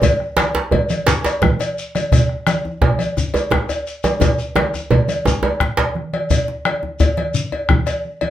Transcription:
0.02 bombo low, cowbell, djembe slap, djembe bass, low conga, shekere
0.20 bombo rim
0.37 bombo rim, cowbell, djembe slap, high conga, shekere
0.55 djembe slap, djembe tone
0.71 bombo low, cowbell, djembe slap, djembe bass, low conga
0.89 cowbell, djembe slap, high conga, shekere
1.07 bombo rim, djembe slap, djembe bass, shekere
1.24 cowbell, djembe slap, shekere
1.42 bombo rim, bombo low, djembe slap, high conga, djembe bass, low conga
1.59 bombo rim, cowbell, djembe tone, shekere
1.78 shekere
1.95 bombo rim, cowbell, high conga, shekere
2.12 bombo low, cowbell, djembe slap, djembe bass, low conga, shekere
2.29 bombo rim
2.47 bombo rim, cowbell, djembe slap, high conga, shekere
2.65 djembe tone
2.82 bombo low, cowbell, djembe tone, low conga
2.99 cowbell, djembe slap, high conga, shekere
3.17 bombo rim, djembe slap, djembe bass, shekere
3.34 cowbell, djembe slap, djembe tone, shekere
3.50 bombo rim, bombo low, djembe slap, djembe tone, low conga
3.69 bombo rim, cowbell, djembe tone, shekere
3.87 shekere
4.04 bombo rim, cowbell, djembe tone, high conga, shekere
4.21 bombo rim, bombo low, cowbell, high conga, djembe tone, low conga, djembe bass, shekere
4.39 shekere
4.56 bombo rim, cowbell, djembe slap, djembe tone, high conga
4.74 bombo rim, djembe tone, shekere
4.91 bombo low, cowbell, djembe tone, high conga, low conga
5.08 cowbell, high conga, shekere
5.26 bombo rim, djembe slap, djembe tone, djembe bass, shekere
5.43 cowbell, djembe tone, high conga
5.60 bombo rim, bombo low, djembe slap, low conga
5.77 cowbell, djembe slap, djembe tone, low conga
5.95 bombo rim, high conga
6.13 bombo rim, cowbell, high conga
6.30 bombo low, cowbell, djembe slap, low conga, djembe bass, shekere
6.48 djembe slap
6.65 bombo rim, cowbell, high conga
6.83 djembe slap, djembe tone, high conga
7.00 bombo rim, bombo low, cowbell, djembe bass, low conga, shekere
7.17 cowbell, djembe slap, high conga
7.34 high conga, shekere
7.52 cowbell, djembe slap, djembe tone
7.69 bombo rim, bombo low, high conga, djembe bass, low conga
7.86 bombo rim, cowbell, djembe slap, shekere
8.05 high conga
8.21 cowbell, djembe slap, djembe tone, high conga

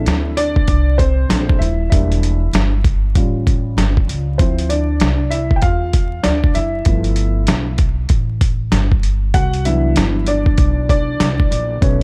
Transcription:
Already playing: A3 C4 D4 E4 E5
0.06 D2, snare, closed hi-hat
0.37 D4 D5, closed hi-hat
0.56 kick
0.68 C2, kick, closed hi-hat
0.98 C4 C5, kick, closed hi-hat
1.29 A#1 A3 C4 D4, snare, closed hi-hat
1.50 kick
1.59 D#1 E4 E5, closed hi-hat
1.90 E1 G3 A#3 D4 E4 E5, kick, closed hi-hat
2.12 closed hi-hat
2.23 closed hi-hat
2.53 G1, snare, closed hi-hat
2.84 kick, closed hi-hat
3.15 A1 G3 C#4 F4, kick, closed hi-hat
3.47 kick, closed hi-hat
3.77 G1, snare, closed hi-hat
3.97 kick
4.08 C#2, closed hi-hat
4.38 D2 F3 C4 E4 C5, kick, closed hi-hat
4.58 closed hi-hat
4.69 D4 D5, closed hi-hat
5.00 C2, snare, closed hi-hat
5.30 E4 E5, closed hi-hat
5.51 kick
5.56 G5
5.62 E2 F4 F5, kick, closed hi-hat
5.93 kick, closed hi-hat
6.23 D2 D4 D5, snare, closed hi-hat
6.44 kick
6.55 F#1 E4 E5, closed hi-hat
6.85 G1 F3 A3 B3 E4, kick, closed hi-hat
7.04 closed hi-hat
7.16 closed hi-hat
7.47 B1, snare, closed hi-hat
7.78 kick, closed hi-hat
8.09 A1, kick, closed hi-hat
8.41 kick, closed hi-hat
8.72 G1, snare, closed hi-hat
8.92 kick
9.03 closed hi-hat
9.34 C2 F#4 F#5, kick, closed hi-hat
9.53 closed hi-hat
9.65 E3 F#3 B3 D4 E4 E5, closed hi-hat
9.96 G1, snare, closed hi-hat
10.27 D4 D5, closed hi-hat
10.46 kick
10.58 B1, kick, closed hi-hat
10.89 D4 D5, kick, closed hi-hat
11.20 C2, snare, closed hi-hat
11.40 kick
11.51 A#1, closed hi-hat
11.81 B1 B2 A3 B3 C#4 C#5, kick, closed hi-hat

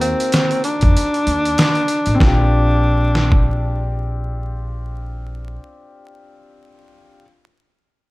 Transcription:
Already playing: D#2 D#3 A#3 F#4 A#4
0.01 C4, closed hi-hat
0.20 closed hi-hat
0.32 snare, closed hi-hat
0.51 closed hi-hat
0.64 D4, closed hi-hat
0.81 F2, kick, closed hi-hat
0.97 closed hi-hat
1.14 closed hi-hat
1.27 D#2, closed hi-hat
1.45 closed hi-hat
1.58 snare, closed hi-hat
1.75 closed hi-hat
1.88 closed hi-hat
2.06 A1, closed hi-hat
2.15 C4 D4
2.20 A#1 D4 F4, kick, snare
2.26 G4
3.15 snare
3.32 kick

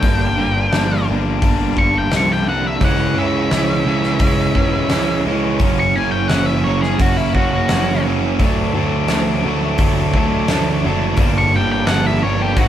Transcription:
Already playing: G5
0.02 G1 G2 D3 G3 A#3 D4, kick, open hi-hat
0.37 G2 D3 G3 A#3 D4
0.54 G3 A#3 D4
0.72 G1 G2 D3 G3 A#3 D4, snare, open hi-hat
1.07 G1 G2 D3 G3 A#3 D4
1.23 G3 A#3 D4
1.42 G1 G2 D3 G3 A#3 D4, kick, open hi-hat
1.59 G3 A#3 D4
1.77 G2 D3 G3 A#3 D4 C#6, kick
1.93 G3 A#3 D4
1.98 G5
2.11 C2 G2 D3 G3 A#3 D4, snare, open hi-hat
2.17 C#6
2.28 A#3 D4
2.33 G5
2.48 G2 D3 G3 A#3 D4 F#5
2.67 E5
2.81 C#2 C#3 E3 F#5, kick, open hi-hat
2.85 G#3 C#4
3.18 C#3 E3 G#3 C#4 E5
3.51 C#2 C#3 E3 G#3 C#4, snare, open hi-hat
3.85 C#2 C#3 E3 G#3 C#4
4.03 snare
4.19 C#2 C#3 E3 G#3 C#4, kick, open hi-hat
4.54 C#2 C#3 E3 G#3, kick
4.59 G#3 C#4
4.89 C#2 C#3 E3, snare, open hi-hat
4.94 G#3 C#4
5.26 C#2 C#3 E3 G#3 C#4
5.59 F#1 F#2 C#3 F#3 A#3 C#4, kick, open hi-hat
5.80 C#6
5.96 F#2 C#3 F#3 A#3 C#4 G#5
6.11 G5
6.28 F#1 F#2 C#3 F#3 A#3 C#4 F#5, snare, open hi-hat
6.46 E5
6.64 F#1 F#2 C#3 F#3 A#3 C#4 C#5
6.82 G#4, snare
6.99 F#1 F#2 C#3 F#3 A#3 C#4 F#4, kick, open hi-hat
7.17 E4
7.35 F#2 C#3 F#3 A#3 C#4 F#4, kick
7.69 F#1 F#2 C#3 F#3 A#3 C#4, snare, open hi-hat
8.05 F#2 C#3 F#3 A#3 C#4
8.39 D2 D3 F#3 A3 D4, kick, open hi-hat
8.76 D3 F#3 A3 D4
9.08 D2 D3 F#3, snare, open hi-hat
9.12 A3 D4
9.45 D2 D3 F#3 A3 D4
9.78 D2 D3 F#3, kick, open hi-hat
9.82 A3 D4
10.13 D2 D3 F#3 A3 D4, kick
10.48 D2 D3 F#3 A3 D4, snare, open hi-hat
10.84 F#1 D3 F#3 A3 D4
11.16 G1 G2 D3 G3 A#3 D4, kick, open hi-hat
11.38 C#6
11.54 G2 D3 G3 A#3 D4 G5
11.72 G5
11.87 G1 G2 D3 G3 A#3 D4 F#5, snare, open hi-hat
12.06 E5
12.23 G1 G2 D3 G3 A#3 D4 C#5
12.42 G4
12.57 G#1 G#2 D#3 F#3 G#3 C4 D#4 F#4, kick, open hi-hat

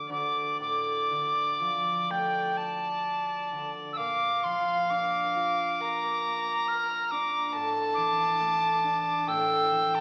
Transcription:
Already playing: D3 A3
0.09 D2 D5 D6
0.60 A2 D6
1.10 D3
1.60 F3
2.10 A3 G5
2.57 A5
3.51 D3
3.93 E6
3.97 A#2 F5 D6
4.44 F3 C6
4.90 D4 D6
5.36 F4
5.80 A#4 A#5
6.68 F6
7.11 D4 D6
7.53 A2 A5
7.94 E3 D6
8.40 A3
8.84 D4
9.27 A2 G5 E6
9.71 E3
9.95 A5

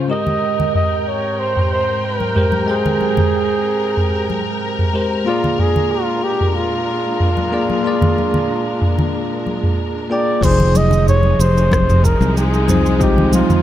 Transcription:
Already playing: C#3 C#4 F4 C5
0.08 G#2 C3 G#3 G4 A#4 D#5 G5
0.13 D#5
0.27 low conga
0.60 low conga
0.75 D#5, mid tom
1.01 D#5
1.08 C#5
1.39 C5
1.57 mid tom
1.73 C5
2.05 A#4
2.20 high conga
2.35 G#3 G4 A#4 C5, mid tom
2.52 high conga
2.66 G#3 A#4 G5
2.70 G#4 C5
2.86 low conga
3.01 high conga
3.17 mid tom, low conga
3.97 mid tom
4.30 high conga
4.79 mid tom
4.93 G#3 G4 A#4 C5
5.25 A#2 G#3 A#3 D4 F4 G#4
5.29 D5
5.44 low conga
5.59 G#4, mid tom
5.76 low conga
5.92 F4
6.24 G4
6.41 mid tom
6.49 G4
6.56 F4
7.20 mid tom
7.37 high conga
7.52 A#3 F4 G#4 D5
7.70 high conga
7.83 A#3 F4 G#4
7.87 D5
8.01 mid tom, low conga
8.18 high conga
8.34 low conga
8.82 mid tom
8.98 low conga
9.46 high conga
9.63 mid tom
10.10 A#3 F4 G#4 D5 G5
10.41 F1 C3 F3 G#3 D#4 C5, kick, crash, shaker
10.46 G#4
10.60 low conga
10.75 D#5, high conga, shaker
10.91 low conga, shaker
11.08 C#5, mid tom, shaker
11.23 high conga
11.39 F1 C5, shaker
11.57 shaker
11.71 kick, cross-stick, high conga, shaker
11.89 mid tom, shaker
12.04 A#4, kick, shaker
12.21 C2, high conga, shaker
12.37 G#4, shaker
12.54 shaker
12.68 F3 C4 D#4 C5, mid tom, high conga, shaker
12.86 shaker
12.99 F3 C4 D#4 G4, kick, shaker
13.04 G#3
13.18 low conga
13.33 F4, high conga, shaker
13.50 mid tom, low conga, shaker

